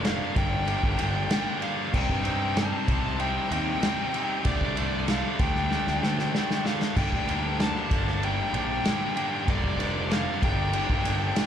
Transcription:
Already playing: F1
0.04 G2 D3 G3 A#3 D4 F5, snare, ride
0.36 G1 G2 D3 G3 A#3 D4 G5, kick, ride
0.67 G2 D3 G3 A#3 D4, ride
0.83 G1, kick
0.98 G1 G2 D3 G3 A#3 D4, ride
1.30 G2 D3 G3 A#3 D4, snare, ride
1.62 G2 D3 G3 A#3 D4 F5, ride
1.92 C2 C3 G3 C4 D#4 G5, kick, crash
2.09 G2, kick
2.24 C3 G3 C4 D#4, ride
2.55 C3 G3 C4 D#4 A5, snare, ride
2.87 C2 C3 G3 C4 D#4, kick, ride
3.19 C3 G3 C4 D#4 G5, ride
3.51 D#2 C3 G3 C4 D#4 G5, ride
3.83 C3 G3 C4 D#4, snare, ride
4.14 C3 G3 C4 D#4, ride
4.44 D2 D3 G3 A3 D4 D5, kick, ride
4.61 C2, kick
4.75 D3 G3 A3 D4, ride
5.08 D3 G3 A3 D4 F5, snare, ride
5.39 D2 D3 G3 A3 D4 G5, kick, ride
5.55 snare
5.71 D3 G3 A3 D4, snare
5.87 D2, snare
6.02 D2 D3 G3 A3 D4, snare
6.19 snare
6.33 D3 G3 A3 D4, snare
6.51 snare
6.64 D3 G3 A3 D4 F5, snare
6.82 snare
6.96 G1 G2 D3 G3 A#3 D4 G5, kick, crash, ride
7.12 D2, kick
7.28 G2 D3 G3 A#3 D4, ride
7.59 G2 D3 G3 A#3 D4 A5, snare, ride
7.89 G1 G2 D3 G3 A#3 D4, kick, ride
8.08 snare
8.22 G2 D3 G3 A#3 D4 G5, ride
8.53 A#1 G2 D3 G3 A#3 D4 G5, ride
8.85 G2 D3 G3 A#3 D4, snare, ride
9.16 G2 D3 G3 A#3 D4, ride
9.47 G1 G2 D3 G3 A#3 D4 D5, kick, ride
9.64 F1, kick
9.77 G2 D3 G3 A#3 D4, ride
10.10 G2 D3 G3 A#3 D4 F5, snare, ride
10.41 G1 G2 D3 G3 A#3 D4 G5, kick, ride
10.73 G2 D3 G3 A#3 D4, ride
10.89 G1, kick
11.04 G1 G2 D3 G3 A#3 D4, ride
11.34 G2 D3 G3 A#3 D4, snare, ride

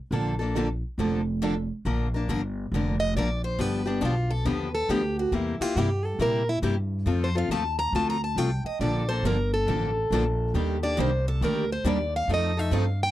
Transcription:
0.11 A#1 D3 F3 A#3 D4 A4
0.39 A#3 D4 A4
0.56 D3 F3 A#3 D4 A4
0.98 F1 D3 F3 A#3 D4 A4
1.42 D3 F3 A#3 D4 A4
1.85 A#1 D3 F3 A#3 D4 A#4
2.14 A#3 D4 A#4
2.28 G1 D3 F3 A#3 D4 A#4
2.72 F1 D3 F3 A#3 D4
2.76 A#4
3.00 D#5
3.15 A#1 D3 F3 A#3 D4 A#4 D5
3.44 C5
3.59 G1 D3 F3 B3 D4 G4 B4
3.85 B3 D4 G4
4.01 B1 D3 F3 B3 D4 F4 G4
4.31 A4
4.45 D#2 D3 F3 B3 D4 G4 B4
4.75 A4
4.89 D2 D3 F3 B3 D4 G4
5.19 F#4
5.32 E2 C3 G3 A#3 E4 G4
5.60 A#3 E4 F4 G4, muted upright bass stroke
5.76 G2 C3 G3 A#3 E4 G4
6.05 A4
6.19 A#2 C3 G3 A#3 E4 G4 A#4
6.49 E4
6.62 G2 C3 G3 A#3 E4 G4
7.06 F2 F3 A3 C4 F4 A4
7.24 C5
7.35 C4 F4 A4 F5
7.49 D#2 F3 A3 C4 F4 A5
7.53 A4
7.79 A#5
7.92 D2 F3 A3 C4 F4 A4 A5
8.10 A#5
8.24 A5
8.36 C2 F3 A3 C4 F4 A4 G5
8.64 D#5, muted upright bass stroke
8.79 A#1 D3 F3 A#3 D4 A4 D5
9.09 A#3 D4 A4 C5
9.23 G1 D3 F3 A#3 D4 A4 A#4
9.54 A4
9.67 A1 D3 F3 A#3 D4 A4
10.10 A#1 D3 F3 A#3 D4 A4
10.54 D#2 D#3 G3 A#3 D4 G4
10.83 A#3 D4 G4 D5
10.97 C2 D#3 G3 A#3 D4 G4 C5
11.28 A4
11.41 D2 D#3 G3 A#3 D4 G4 A#4
11.72 C5
11.84 D#2 D#3 G3 A#3 D4 G4 D5
12.16 F5
12.28 F2 F3 A3 C4 D#4 A4
12.34 D#5
12.57 A3 D#4 A4 E5
12.71 G2 F3 A3 C4 D#4 A4
12.76 F5
13.03 G5

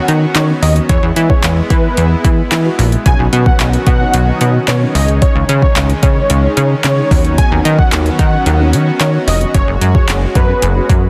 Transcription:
Already playing: D#3 F#3 B3 C#4 D#4 F#4 C#5
0.08 D#3, closed hi-hat
0.35 D#3 C#5, clap, closed hi-hat
0.49 B3 C#4 D#4 F#4 C#5
0.62 D#2 D#5, open hi-hat
0.76 closed hi-hat
0.89 E2 G#3 B3 E4 G#4 C#5, kick, closed hi-hat
1.03 E2
1.16 E3, closed hi-hat
1.30 B3 E4 G#4 C#5, kick
1.44 E2, clap, closed hi-hat
1.70 E3 B4, kick, closed hi-hat
1.84 B3 E4 A#4
1.97 E2, closed hi-hat
2.11 B3 E4 G#4
2.24 E3, kick, closed hi-hat
2.52 E3, clap, closed hi-hat
2.65 B3 E4 F#4
2.79 A#1, open hi-hat
2.92 closed hi-hat
3.06 B1 D#3 F#3 B3 C#4 D#4 F#4 C#5 G#5, kick, closed hi-hat
3.19 B1
3.33 B2, closed hi-hat
3.46 B3 C#4 D#4 F#4 B4 F#5, kick
3.60 B1, clap, closed hi-hat
3.73 closed hi-hat
3.87 B2 F#5, kick, closed hi-hat
4.00 B3 C#4 D#4 F#4 D#5
4.14 B1, closed hi-hat
4.27 B3 C#4 D#4 F#4 D#5
4.41 B2, closed hi-hat
4.68 B2 C#5, clap, closed hi-hat
4.81 B3 C#4 D#4 F#4 C#5
4.95 C#2 G#3 D#4 G#4 C#5 D#5, open hi-hat
5.08 closed hi-hat
5.22 C#5, kick, closed hi-hat
5.35 C#2
5.49 C#3, closed hi-hat
5.62 D#4 G#4 C#5, kick
5.76 C#2, clap, closed hi-hat
5.90 closed hi-hat
6.03 C#3 C#5, kick, closed hi-hat
6.16 D#4 G#4 C#5
6.30 C#2, closed hi-hat
6.43 D#4 G#4 C#5
6.57 C#3, closed hi-hat
6.84 C#3 C#5, clap, closed hi-hat
6.98 D#4 G#4 C#5
7.11 D#2 F#3 B3 C#4 D#4 F#4 C#5, kick, open hi-hat
7.25 closed hi-hat
7.38 G#5, kick, closed hi-hat
7.52 D#2
7.65 D#3, closed hi-hat
7.79 B3 C#4 D#4 F#4 C#5 F#5, kick
7.92 D#2, clap, closed hi-hat
8.06 closed hi-hat
8.19 D#3 F#5, kick, closed hi-hat
8.33 B3 C#4 D#4 F#4 C#5
8.46 D#2, closed hi-hat
8.60 B3 C#4 D#4 F#4 C#5
8.73 D#3, closed hi-hat
9.00 D#3 C#5, clap, closed hi-hat
9.14 B3 C#4 D#4 F#4 C#5
9.27 F1 D#5, open hi-hat
9.41 closed hi-hat
9.54 F#1 G#3 C#4 F#4 G#4 C#5, kick, closed hi-hat
9.68 F#1
9.81 F#2, closed hi-hat
9.95 C#4 F#4 G#4 C#5, kick
10.08 F#1, clap, closed hi-hat
10.35 F#2 B4, kick, closed hi-hat
10.49 C#4 F#4 G#4
10.62 F#1, closed hi-hat
10.76 C#4 F#4 G#4
10.89 F#2, kick, closed hi-hat

